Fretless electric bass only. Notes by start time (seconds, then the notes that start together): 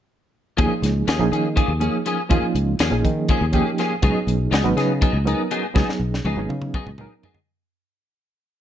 0.59 D#2
0.72 muted fretless electric bass stroke
0.82 C#2
1.08 D#2
1.19 A#1
1.32 D#3
1.68 D#2
2.31 D#2
2.42 muted fretless electric bass stroke
2.55 C#2
2.80 D#2
2.91 A#1
3.04 D#3
3.41 D#2
4.03 C#2
4.15 muted fretless electric bass stroke
4.27 B1
4.51 C#2
4.64 G#1
4.75 C#3
5.13 C#2
5.76 C#2
5.87 muted fretless electric bass stroke
5.99 B1
6.25 C#2
6.36 G#1
6.49 C#3
6.86 C#2